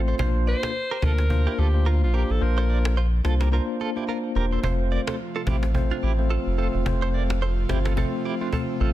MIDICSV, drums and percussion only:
0, 0, Header, 1, 2, 480
1, 0, Start_track
1, 0, Tempo, 555556
1, 166, Time_signature, 4, 2, 24, 8
1, 7716, End_track
2, 0, Start_track
2, 0, Title_t, "Cajon"
2, 68, Note_on_c, 9, 38, 41
2, 155, Note_off_c, 9, 38, 0
2, 167, Note_on_c, 9, 36, 120
2, 253, Note_off_c, 9, 36, 0
2, 404, Note_on_c, 9, 38, 28
2, 491, Note_off_c, 9, 38, 0
2, 546, Note_on_c, 9, 38, 113
2, 632, Note_off_c, 9, 38, 0
2, 647, Note_on_c, 9, 38, 33
2, 733, Note_off_c, 9, 38, 0
2, 885, Note_on_c, 9, 36, 88
2, 885, Note_on_c, 9, 38, 92
2, 971, Note_off_c, 9, 38, 0
2, 972, Note_off_c, 9, 36, 0
2, 1023, Note_on_c, 9, 38, 90
2, 1110, Note_off_c, 9, 38, 0
2, 1125, Note_on_c, 9, 36, 89
2, 1211, Note_off_c, 9, 36, 0
2, 1365, Note_on_c, 9, 38, 31
2, 1451, Note_off_c, 9, 38, 0
2, 1505, Note_on_c, 9, 38, 44
2, 1591, Note_off_c, 9, 38, 0
2, 1603, Note_on_c, 9, 38, 36
2, 1690, Note_off_c, 9, 38, 0
2, 1849, Note_on_c, 9, 38, 26
2, 1935, Note_off_c, 9, 38, 0
2, 1987, Note_on_c, 9, 38, 40
2, 2073, Note_off_c, 9, 38, 0
2, 2086, Note_on_c, 9, 38, 39
2, 2172, Note_off_c, 9, 38, 0
2, 2323, Note_on_c, 9, 38, 27
2, 2410, Note_off_c, 9, 38, 0
2, 2465, Note_on_c, 9, 38, 116
2, 2551, Note_off_c, 9, 38, 0
2, 2566, Note_on_c, 9, 38, 33
2, 2652, Note_off_c, 9, 38, 0
2, 2805, Note_on_c, 9, 38, 92
2, 2892, Note_off_c, 9, 38, 0
2, 2943, Note_on_c, 9, 38, 88
2, 3029, Note_off_c, 9, 38, 0
2, 3045, Note_on_c, 9, 38, 43
2, 3131, Note_off_c, 9, 38, 0
2, 3285, Note_on_c, 9, 38, 31
2, 3371, Note_off_c, 9, 38, 0
2, 3425, Note_on_c, 9, 38, 44
2, 3511, Note_off_c, 9, 38, 0
2, 3523, Note_on_c, 9, 38, 36
2, 3609, Note_off_c, 9, 38, 0
2, 3769, Note_on_c, 9, 38, 26
2, 3855, Note_off_c, 9, 38, 0
2, 3906, Note_on_c, 9, 38, 40
2, 3992, Note_off_c, 9, 38, 0
2, 4005, Note_on_c, 9, 36, 119
2, 4092, Note_off_c, 9, 36, 0
2, 4242, Note_on_c, 9, 38, 27
2, 4328, Note_off_c, 9, 38, 0
2, 4384, Note_on_c, 9, 38, 120
2, 4471, Note_off_c, 9, 38, 0
2, 4485, Note_on_c, 9, 38, 33
2, 4571, Note_off_c, 9, 38, 0
2, 4724, Note_on_c, 9, 38, 94
2, 4725, Note_on_c, 9, 36, 87
2, 4810, Note_off_c, 9, 38, 0
2, 4811, Note_off_c, 9, 36, 0
2, 4862, Note_on_c, 9, 38, 88
2, 4948, Note_off_c, 9, 38, 0
2, 4964, Note_on_c, 9, 36, 88
2, 5051, Note_off_c, 9, 36, 0
2, 5206, Note_on_c, 9, 38, 30
2, 5292, Note_off_c, 9, 38, 0
2, 5345, Note_on_c, 9, 38, 43
2, 5432, Note_off_c, 9, 38, 0
2, 5444, Note_on_c, 9, 38, 37
2, 5530, Note_off_c, 9, 38, 0
2, 5690, Note_on_c, 9, 38, 25
2, 5777, Note_off_c, 9, 38, 0
2, 5828, Note_on_c, 9, 38, 41
2, 5914, Note_off_c, 9, 38, 0
2, 5927, Note_on_c, 9, 36, 123
2, 6013, Note_off_c, 9, 36, 0
2, 6165, Note_on_c, 9, 38, 26
2, 6252, Note_off_c, 9, 38, 0
2, 6308, Note_on_c, 9, 38, 114
2, 6394, Note_off_c, 9, 38, 0
2, 6408, Note_on_c, 9, 38, 33
2, 6494, Note_off_c, 9, 38, 0
2, 6647, Note_on_c, 9, 36, 85
2, 6648, Note_on_c, 9, 38, 95
2, 6733, Note_off_c, 9, 36, 0
2, 6734, Note_off_c, 9, 38, 0
2, 6786, Note_on_c, 9, 38, 88
2, 6873, Note_off_c, 9, 38, 0
2, 6887, Note_on_c, 9, 36, 94
2, 6973, Note_off_c, 9, 36, 0
2, 7128, Note_on_c, 9, 38, 31
2, 7215, Note_off_c, 9, 38, 0
2, 7267, Note_on_c, 9, 38, 47
2, 7353, Note_off_c, 9, 38, 0
2, 7366, Note_on_c, 9, 36, 86
2, 7453, Note_off_c, 9, 36, 0
2, 7611, Note_on_c, 9, 38, 27
2, 7697, Note_off_c, 9, 38, 0
2, 7716, End_track
0, 0, End_of_file